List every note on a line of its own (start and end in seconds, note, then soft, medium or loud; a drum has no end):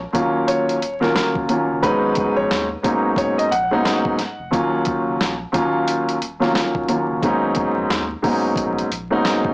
0.13 0.77 D#2 medium
0.13 0.77 F#3 medium
0.13 0.77 A#3 medium
0.13 0.77 C#4 medium
0.13 0.77 F4 loud
0.13 kick loud
0.13 closed hi-hat loud
0.48 0.98 C#5 medium
0.48 closed hi-hat loud
0.69 closed hi-hat soft
0.82 1.08 D#1 loud
0.82 closed hi-hat medium
1.00 1.12 D#2 medium
1.00 1.12 F#3 medium
1.00 1.13 A#3 medium
1.00 1.13 C#4 medium
1.00 1.14 F4 loud
1.00 1.32 A#4 medium
1.00 snare soft
1.13 1.46 D#2 medium
1.13 1.46 F#3 medium
1.13 1.46 A#3 medium
1.13 1.47 C#4 medium
1.13 1.47 F4 medium
1.13 snare loud
1.18 closed hi-hat medium
1.35 kick medium
1.48 1.80 D#2 medium
1.48 1.81 F#3 medium
1.48 1.81 A#3 medium
1.48 1.81 C#4 medium
1.48 1.81 F4 medium
1.48 closed hi-hat medium
1.69 1.80 F#1 loud
1.83 2.25 G#1 loud
1.83 2.63 G#2 loud
1.83 2.63 F#3 medium
1.83 2.63 G#3 medium
1.83 2.63 B3 medium
1.83 2.63 C#4 medium
1.83 2.64 D#4 loud
1.83 2.33 B4 loud
1.83 kick loud
1.83 closed hi-hat loud
2.15 kick loud
2.15 closed hi-hat medium
2.37 2.47 A#1 medium
2.37 2.67 C#5 medium
2.51 2.77 D#2 medium
2.51 snare loud
2.51 closed hi-hat medium
2.83 3.47 G#2 medium
2.83 3.47 F#3 medium
2.83 3.47 A#3 medium
2.83 3.47 B3 medium
2.83 3.47 C#4 medium
2.83 3.48 D#4 loud
2.83 kick loud
2.83 closed hi-hat loud
3.16 3.35 C#5 medium
3.16 kick loud
3.16 closed hi-hat loud
3.38 3.50 D#5 medium
3.38 closed hi-hat soft
3.51 3.78 A#1 medium
3.51 4.49 F#5 medium
3.51 closed hi-hat medium
3.71 4.15 G#2 loud
3.71 4.16 F#3 medium
3.71 4.16 A#3 medium
3.71 4.16 B3 medium
3.71 4.16 C#4 medium
3.71 4.16 D#4 loud
3.85 snare loud
3.85 closed hi-hat medium
4.05 kick medium
4.19 snare soft
4.19 closed hi-hat medium
4.39 4.50 F1 medium
4.51 4.94 D#1 loud
4.51 5.31 D#2 loud
4.51 5.31 F#3 medium
4.51 5.32 A#3 medium
4.51 5.32 C#4 medium
4.51 5.32 F4 loud
4.51 kick loud
4.51 closed hi-hat medium
4.85 kick loud
4.85 closed hi-hat medium
5.06 5.17 F#1 medium
5.20 5.46 A#1 medium
5.20 snare loud
5.20 closed hi-hat medium
5.52 6.16 D#2 medium
5.52 6.16 F#3 medium
5.52 6.16 A#3 medium
5.52 6.17 C#4 medium
5.52 6.17 F4 loud
5.52 kick loud
5.52 closed hi-hat loud
5.88 closed hi-hat loud
6.09 closed hi-hat soft
6.21 6.48 D#1 loud
6.21 closed hi-hat medium
6.40 6.51 D#2 medium
6.40 6.52 F#3 medium
6.40 6.52 A#3 medium
6.40 6.53 C#4 medium
6.40 6.53 F4 loud
6.40 snare soft
6.53 6.85 D#2 medium
6.53 6.86 F#3 medium
6.53 6.86 A#3 medium
6.53 6.86 C#4 medium
6.53 6.86 F4 medium
6.53 snare loud
6.57 closed hi-hat medium
6.75 kick medium
6.88 7.20 D#2 medium
6.88 7.20 F#3 medium
6.88 7.20 A#3 medium
6.88 7.20 C#4 medium
6.88 7.21 F4 medium
6.88 closed hi-hat medium
7.09 7.19 F#1 medium
7.23 7.64 G#1 loud
7.23 8.02 G#2 loud
7.23 8.02 F#3 medium
7.23 8.02 A#3 medium
7.23 8.03 B3 medium
7.23 8.03 C#4 medium
7.23 8.03 D#4 loud
7.23 kick loud
7.23 closed hi-hat loud
7.55 kick loud
7.55 closed hi-hat medium
7.76 7.87 A#1 medium
7.90 8.16 D#2 medium
7.90 snare loud
7.90 closed hi-hat medium
8.22 8.86 G#2 medium
8.22 8.86 F#3 medium
8.22 8.86 A#3 medium
8.22 8.86 B3 medium
8.22 8.87 C#4 medium
8.22 8.87 D#4 loud
8.22 kick loud
8.22 open hi-hat medium
8.56 8.83 A#1 loud
8.56 kick loud
8.56 closed hi-hat loud
8.78 closed hi-hat soft
8.91 9.17 A#1 medium
8.91 closed hi-hat medium
9.10 9.54 G#2 medium
9.10 9.54 F#3 medium
9.10 9.54 A#3 medium
9.10 9.54 B3 medium
9.10 9.54 C#4 medium
9.10 9.54 D#4 loud
9.25 snare loud
9.25 closed hi-hat medium
9.45 9.54 G#1 medium
9.45 kick medium